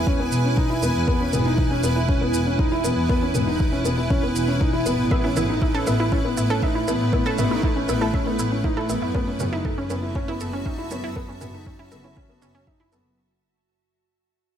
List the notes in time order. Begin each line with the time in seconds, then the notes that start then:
Already playing: E4 B4 G#5
0.07 C#4, kick
0.20 B3
0.32 E1, shaker
0.45 C#4
0.57 D#4, kick
0.70 E4
0.83 E1 B3, shaker
0.95 E2
1.08 B3, kick
1.20 C#4
1.33 E1 B3, mid tom, shaker
1.46 D#4
1.58 kick
1.71 C#4
1.83 E1 B3, shaker
1.96 E4
2.09 C#4, kick
2.21 B3
2.34 E1, shaker
2.47 C#4
2.59 D#4, kick
2.72 E4
2.84 E1 B3, shaker
2.97 E2
3.09 B3, kick
3.22 C#4
3.34 E1 B3, mid tom, shaker
3.47 D#4
3.60 kick
3.72 C#4
3.85 E1 B3, shaker
3.98 E4
4.10 C#4, kick
4.23 B3
4.36 E1, shaker
4.48 C#4
4.60 D#4, kick
4.73 E4
4.86 E1 B3, shaker
4.98 A1
5.11 A3 B3 E5, kick
5.24 C#4 E4
5.36 A1 B3 E4, mid tom, shaker
5.49 D#4
5.62 E4, kick
5.74 C#4 A4
5.87 A1 B3 E5, shaker
6.00 E4
6.12 C#4 E4, kick
6.25 B3
6.37 A1 E4, shaker
6.50 C#4 A4
6.62 D#4 E5, kick
6.75 E4
6.88 A1 B3 E4, shaker
7.00 A2
7.13 B3 E4, kick
7.26 C#4 A4
7.38 A1 B3 E5, mid tom, shaker
7.51 D#4 E4
7.63 E4, kick
7.76 C#4
7.88 A1 B3 E4, shaker
8.01 E4 A4
8.14 C#4 E5, kick
8.26 B3 E4
8.39 A1 E4, shaker
8.52 C#4
8.64 D#4 E4, kick
8.77 E4 A4
8.89 A1 B3 E5, shaker
9.02 F#2 E4
9.14 B3 C#4 F#4 E5 A5, kick
9.27 C#4
9.40 F#1 B3 C#4, mid tom, shaker
9.52 D#4 E4
9.65 A4, kick
9.78 C#4
9.90 F#1 B3 C#4, shaker
10.03 E4
10.15 C#4, kick
10.28 B3 E4
10.40 F#1 A4, shaker
10.53 C#4
10.66 C#4 D#4, kick
10.78 E4
10.91 F#1 B3 C#4, shaker
11.03 F#2 E4
11.16 B3 A4, kick
11.29 C#4
11.41 F#1 B3 C#4, mid tom, shaker
11.54 D#4
11.66 C#4, kick
11.79 C#4 E4
11.91 F#1 B3 A4, shaker
12.04 C#4 E4
12.17 C#4, kick
12.29 B3
12.42 F#1 C#4, shaker
12.54 C#4
12.67 D#4 E5, kick
12.80 E4
12.92 F#1 B3 A4, shaker
13.05 F#1